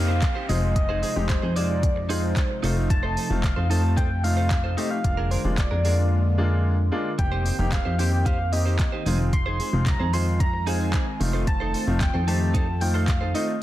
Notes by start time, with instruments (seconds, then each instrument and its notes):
Already playing: analog synth bass F2, supersaw synth C3 G3 A#3 D#4, grand piano G3 A#3 C4 D#4, soft synth lead F5, downlifter
0.08 clean electric guitar D#4 G4 C5
0.22 kick, clap, closed hi-hat
0.35 clean electric guitar D#4 G4 C5
0.49 analog synth bass F1, supersaw synth F3 G#3, grand piano G#3 C4 D#4 F4, clean electric guitar D#4 G#4 C5, soft synth lead D#5, open hi-hat
0.62 muted clean electric guitar stroke
0.76 soft synth lead D#5, muted clean electric guitar stroke, kick, closed hi-hat
0.89 clean electric guitar D#4 G#4 C5
1.02 clean electric guitar D#4 G#4 C5, soft synth lead D#5, open hi-hat
1.16 analog synth bass F1, grand piano G#3 C4 D#4 G4, muted clean electric guitar stroke
1.29 soft synth lead C5, muted clean electric guitar stroke, kick, clap, closed hi-hat
1.42 analog synth bass F2, clean electric guitar D#4 G#4 C5
1.56 grand piano G#3 C4 D#4 F4, clean electric guitar D#4 G#4 C5, soft synth lead D5, open hi-hat
1.69 muted clean electric guitar stroke
1.83 muted clean electric guitar stroke, kick, closed hi-hat
1.96 muted clean electric guitar stroke
2.09 grand piano G#3 C4 D#4 F4, clean electric guitar D#4 G#4 C5, soft synth lead C5, open hi-hat
2.23 muted clean electric guitar stroke
2.37 kick, clap, closed hi-hat
2.50 muted clean electric guitar stroke
2.63 analog synth bass F1, grand piano A3 C4 D#4 F4, supersaw synth A3, clean electric guitar D#4 A4 C5, open hi-hat
2.76 muted clean electric guitar stroke
2.90 soft synth lead A5, muted clean electric guitar stroke, kick, closed hi-hat
3.03 clean electric guitar D#4 A4 C5
3.16 clean electric guitar D#4 A4 C5, open hi-hat
3.30 analog synth bass F1, grand piano A3 C4 D#4 F4, muted clean electric guitar stroke
3.43 soft synth lead F5, muted clean electric guitar stroke, kick, clap, closed hi-hat
3.56 analog synth bass F2, clean electric guitar D#4 A4 C5
3.70 grand piano A3 C4 D#4 F4, clean electric guitar D#4 A4 C5, soft synth lead A5, open hi-hat
3.96 clean electric guitar D#4 A4 C5, soft synth lead G5, kick, closed hi-hat
4.10 muted clean electric guitar stroke
4.24 grand piano A3 C4 D#4 F4, soft synth lead F5, muted clean electric guitar stroke, open hi-hat
4.37 clean electric guitar D#4 A4 C5
4.51 kick, clap, closed hi-hat
4.64 clean electric guitar D#4 A4 C5
4.77 grand piano A3 C4 D#4 G4, clean electric guitar D#4 A4 C5, soft synth lead D#5, open hi-hat
4.91 soft synth lead F5, muted clean electric guitar stroke
5.04 analog synth bass F1, supersaw synth D3 G#3 A#3 F4, grand piano G#3 A#3 D4 F4, soft synth lead F5, muted clean electric guitar stroke, kick, closed hi-hat
5.17 clean electric guitar D4 G#4 A#4
5.31 clean electric guitar D4 G#4 A#4, soft synth lead C5, open hi-hat
5.44 analog synth bass F1, grand piano G#3 A#3 D4 F4
5.58 soft synth lead D5, muted clean electric guitar stroke, kick, clap, closed hi-hat
5.71 analog synth bass F2, clean electric guitar D4 G#4 A#4
5.84 grand piano G#3 A#3 D4 F4, clean electric guitar D4 G#4 A#4, open hi-hat
5.98 muted clean electric guitar stroke
6.38 grand piano G#3 A#3 D4 F4
6.92 grand piano G#3 A#3 D4 F4
7.18 analog synth bass F1, supersaw synth D#3 A#3 C4 G4, grand piano A#3 C4 D#4 G4, soft synth lead G5, muted clean electric guitar stroke, kick, closed hi-hat
7.32 clean electric guitar D#4 G4 C5
7.45 clean electric guitar D#4 G4 C5, open hi-hat
7.59 analog synth bass F1, grand piano A#3 C4 D#4 G4, muted clean electric guitar stroke
7.72 soft synth lead F5, muted clean electric guitar stroke, kick, clap, closed hi-hat
7.85 analog synth bass F2, clean electric guitar D#4 G4 C5
7.99 grand piano A#3 C4 D#4 G4, clean electric guitar D#4 G4 C5, soft synth lead G5, open hi-hat
8.12 muted clean electric guitar stroke
8.25 clean electric guitar D#4 G4 C5, soft synth lead F5, kick, closed hi-hat
8.39 muted clean electric guitar stroke
8.52 grand piano A#3 C4 D#4 G4, soft synth lead D#5, muted clean electric guitar stroke, open hi-hat
8.66 clean electric guitar D#4 G4 C5
8.79 kick, clap, closed hi-hat
8.92 clean electric guitar D#4 G4 C5
9.06 analog synth bass F1, grand piano G#3 C4 D#4 F4, supersaw synth G#3 C4 F4, clean electric guitar D#4 G#4 C5, open hi-hat
9.19 muted clean electric guitar stroke
9.33 soft synth lead C6, muted clean electric guitar stroke, kick, closed hi-hat
9.46 clean electric guitar D#4 G#4 C5
9.59 clean electric guitar D#4 G#4 C5, open hi-hat
9.73 analog synth bass F1, grand piano G#3 C4 D#4 F4
9.86 soft synth lead A#5, muted clean electric guitar stroke, kick, clap, closed hi-hat
10.00 analog synth bass F2, clean electric guitar D#4 G#4 C5
10.13 grand piano G#3 C4 D#4 F4, clean electric guitar D#4 G#4 C5, soft synth lead C6, open hi-hat
10.40 soft synth lead A#5, muted clean electric guitar stroke, kick, closed hi-hat
10.53 muted clean electric guitar stroke
10.67 grand piano G#3 C4 D#4 F4, clean electric guitar D#4 G#4 C5, soft synth lead G#5, open hi-hat
10.80 clean electric guitar D#4 G#4 C5
10.93 clean electric guitar D#4 G#4 C5, kick, clap, closed hi-hat
11.07 muted clean electric guitar stroke
11.20 analog synth bass F1, grand piano A3 C4 D#4 F4, supersaw synth A3, muted clean electric guitar stroke, open hi-hat
11.33 clean electric guitar D#4 A4 C5
11.47 soft synth lead A5, muted clean electric guitar stroke, kick, closed hi-hat
11.60 clean electric guitar D#4 A4 C5
11.74 clean electric guitar D#4 A4 C5, open hi-hat
11.87 analog synth bass F1, grand piano A3 C4 D#4 F4, muted clean electric guitar stroke
12.01 soft synth lead G5, muted clean electric guitar stroke, kick, clap, closed hi-hat
12.14 analog synth bass F2, clean electric guitar D#4 A4 C5
12.27 grand piano A3 C4 D#4 G4, clean electric guitar D#4 A4 C5, soft synth lead A5, open hi-hat
12.41 muted clean electric guitar stroke
12.54 clean electric guitar D#4 A4 C5, kick, closed hi-hat
12.68 muted clean electric guitar stroke
12.81 grand piano A3 C4 D#4 F4, soft synth lead G5, muted clean electric guitar stroke, open hi-hat
12.94 clean electric guitar D#4 A4 C5, soft synth lead F5
13.08 kick, clap, closed hi-hat
13.21 clean electric guitar D#4 A4 C5
13.34 grand piano A3 C4 D#4 F4, clean electric guitar D#4 A4 C5, soft synth lead D#5, open hi-hat
13.48 muted clean electric guitar stroke